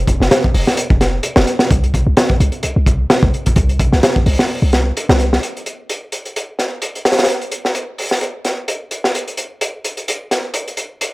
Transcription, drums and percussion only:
0.07 kick medium
0.07 closed hi-hat medium
0.21 snare soft
0.31 snare loud
0.31 closed hi-hat loud
0.44 kick medium
0.54 open hi-hat medium
0.67 snare soft
0.77 closed hi-hat loud
0.90 kick medium
1.01 snare soft
1.01 closed hi-hat medium
1.23 closed hi-hat medium
1.36 snare loud
1.47 closed hi-hat medium
1.59 snare medium
1.71 kick loud
1.71 closed hi-hat medium
1.83 closed hi-hat soft
1.94 kick medium
1.94 closed hi-hat medium
2.17 snare loud
2.17 closed hi-hat medium
2.30 kick loud
2.40 closed hi-hat medium
2.52 closed hi-hat soft
2.63 closed hi-hat medium
2.86 kick medium
2.86 closed hi-hat medium
3.10 snare loud
3.10 closed hi-hat medium
3.23 kick medium
3.34 closed hi-hat soft
3.46 kick medium
3.46 closed hi-hat medium
3.56 kick loud
3.56 closed hi-hat medium
3.69 closed hi-hat soft
3.79 kick medium
3.79 closed hi-hat medium
3.93 snare soft
4.03 snare loud
4.03 closed hi-hat loud
4.16 kick loud
4.26 open hi-hat medium
4.39 snare medium
4.73 snare soft
4.73 closed hi-hat medium
4.97 closed hi-hat medium
5.09 snare loud
5.20 closed hi-hat medium
5.33 snare medium
5.43 closed hi-hat medium
5.57 closed hi-hat soft
5.66 closed hi-hat medium
5.89 closed hi-hat medium
6.12 closed hi-hat medium
6.25 closed hi-hat soft
6.36 closed hi-hat medium
6.59 snare soft
6.59 closed hi-hat medium
6.82 closed hi-hat medium
6.95 closed hi-hat soft
7.05 snare medium
7.05 closed hi-hat medium
7.12 snare medium
7.12 closed hi-hat medium
7.18 snare medium
7.18 closed hi-hat medium
7.23 snare medium
7.23 closed hi-hat medium
7.29 closed hi-hat medium
7.41 closed hi-hat soft
7.52 closed hi-hat medium
7.65 snare soft
7.75 closed hi-hat medium
7.98 open hi-hat medium
8.11 snare soft
8.21 closed hi-hat medium
8.45 snare soft
8.45 closed hi-hat medium
8.68 closed hi-hat medium
8.91 closed hi-hat medium
9.04 snare soft
9.15 closed hi-hat medium
9.28 closed hi-hat soft
9.37 closed hi-hat medium
9.61 closed hi-hat medium
9.84 closed hi-hat medium
9.97 closed hi-hat soft
10.08 closed hi-hat medium
10.31 snare soft
10.31 closed hi-hat medium
10.54 closed hi-hat medium
10.68 closed hi-hat soft
10.77 closed hi-hat medium
11.01 closed hi-hat medium

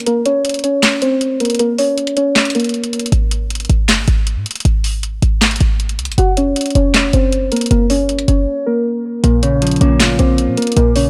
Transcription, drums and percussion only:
0.00 closed hi-hat soft
0.06 closed hi-hat medium
0.26 closed hi-hat medium
0.45 closed hi-hat medium
0.49 closed hi-hat medium
0.54 closed hi-hat medium
0.59 closed hi-hat soft
0.64 closed hi-hat medium
0.83 snare loud
0.83 clap medium
0.83 closed hi-hat medium
1.02 closed hi-hat medium
1.21 closed hi-hat medium
1.40 closed hi-hat medium
1.45 closed hi-hat medium
1.50 closed hi-hat medium
1.55 closed hi-hat medium
1.59 closed hi-hat medium
1.78 open hi-hat medium
1.98 closed hi-hat medium
2.07 closed hi-hat medium
2.17 closed hi-hat medium
2.36 snare loud
2.36 clap loud
2.36 closed hi-hat soft
2.41 closed hi-hat soft
2.45 closed hi-hat medium
2.50 closed hi-hat medium
2.55 closed hi-hat medium
2.60 closed hi-hat medium
2.64 closed hi-hat medium
2.69 closed hi-hat medium
2.74 closed hi-hat soft
2.84 closed hi-hat medium
2.93 closed hi-hat medium
2.99 closed hi-hat medium
3.06 closed hi-hat medium
3.12 closed hi-hat medium
3.31 closed hi-hat medium
3.50 closed hi-hat medium
3.55 closed hi-hat medium
3.60 closed hi-hat soft
3.65 closed hi-hat soft
3.70 closed hi-hat medium
3.88 snare loud
3.88 clap medium
3.88 closed hi-hat medium
4.08 closed hi-hat medium
4.27 closed hi-hat medium
4.46 closed hi-hat medium
4.51 closed hi-hat medium
4.56 closed hi-hat medium
4.60 closed hi-hat medium
4.65 closed hi-hat medium
4.84 open hi-hat medium
5.03 closed hi-hat medium
5.22 closed hi-hat medium
5.42 snare loud
5.42 clap medium
5.42 closed hi-hat soft
5.46 closed hi-hat medium
5.51 closed hi-hat medium
5.56 closed hi-hat medium
5.60 closed hi-hat medium
5.80 closed hi-hat medium
5.89 closed hi-hat medium
5.99 closed hi-hat medium
6.05 closed hi-hat medium
6.12 closed hi-hat soft
6.18 closed hi-hat medium
6.37 closed hi-hat medium
6.56 closed hi-hat medium
6.61 closed hi-hat medium
6.66 closed hi-hat medium
6.70 closed hi-hat soft
6.75 closed hi-hat medium
6.94 snare loud
6.94 clap loud
6.94 closed hi-hat medium
7.13 closed hi-hat medium
7.32 closed hi-hat medium
7.52 closed hi-hat medium
7.56 closed hi-hat medium
7.61 closed hi-hat medium
7.66 closed hi-hat medium
7.71 closed hi-hat medium
7.90 open hi-hat medium
8.09 closed hi-hat medium
8.19 closed hi-hat medium
8.28 closed hi-hat medium
9.24 closed hi-hat medium
9.43 closed hi-hat medium
9.62 closed hi-hat medium
9.67 closed hi-hat medium
9.71 closed hi-hat medium
9.76 closed hi-hat soft
9.81 closed hi-hat medium
10.00 snare loud
10.00 clap loud
10.00 closed hi-hat medium
10.19 closed hi-hat medium
10.38 closed hi-hat medium
10.57 closed hi-hat medium
10.62 closed hi-hat medium
10.67 closed hi-hat medium
10.72 closed hi-hat medium
10.77 closed hi-hat medium
10.96 open hi-hat medium

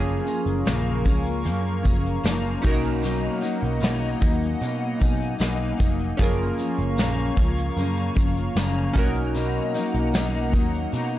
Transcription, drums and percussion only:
0.08 closed hi-hat soft
0.27 closed hi-hat medium
0.27 tambourine soft
0.46 closed hi-hat medium
0.67 snare loud
0.67 closed hi-hat loud
0.67 tambourine medium
0.86 closed hi-hat soft
1.05 kick medium
1.05 closed hi-hat medium
1.05 tambourine soft
1.26 closed hi-hat soft
1.45 closed hi-hat medium
1.66 closed hi-hat soft
1.85 kick loud
1.85 closed hi-hat medium
1.85 tambourine medium
2.06 closed hi-hat medium
2.25 snare loud
2.25 closed hi-hat medium
2.25 tambourine medium
2.65 kick loud
2.65 tambourine medium
2.65 crash medium
2.84 closed hi-hat medium
3.04 closed hi-hat loud
3.04 tambourine medium
3.43 closed hi-hat medium
3.43 tambourine soft
3.63 closed hi-hat medium
3.83 snare loud
3.83 closed hi-hat loud
3.83 tambourine medium
4.22 kick medium
4.22 closed hi-hat medium
4.22 tambourine soft
4.43 closed hi-hat soft
4.62 closed hi-hat medium
4.62 tambourine soft
5.01 kick loud
5.01 closed hi-hat medium
5.01 tambourine medium
5.22 closed hi-hat medium
5.40 snare loud
5.40 closed hi-hat loud
5.40 tambourine medium
5.80 kick loud
5.80 closed hi-hat medium
5.80 tambourine medium
5.99 closed hi-hat medium
6.19 kick loud
6.19 closed hi-hat loud
6.19 tambourine medium
6.58 closed hi-hat medium
6.58 tambourine soft
6.78 closed hi-hat medium
6.98 snare loud
6.98 closed hi-hat loud
6.98 tambourine medium
7.18 closed hi-hat soft
7.37 kick medium
7.37 closed hi-hat medium
7.58 closed hi-hat medium
7.77 closed hi-hat medium
7.77 tambourine soft
7.98 closed hi-hat soft
8.16 kick loud
8.16 closed hi-hat medium
8.16 tambourine medium
8.37 closed hi-hat medium
8.56 snare loud
8.56 closed hi-hat medium
8.56 tambourine medium
8.96 kick loud
8.96 closed hi-hat loud
8.96 tambourine medium
9.15 closed hi-hat soft
9.35 closed hi-hat loud
9.35 tambourine medium
9.74 closed hi-hat medium
9.74 tambourine soft
9.94 closed hi-hat medium
10.14 snare loud
10.14 closed hi-hat loud
10.14 tambourine medium
10.34 closed hi-hat soft
10.53 kick medium
10.53 closed hi-hat medium
10.53 tambourine soft
10.74 closed hi-hat soft
10.93 closed hi-hat medium

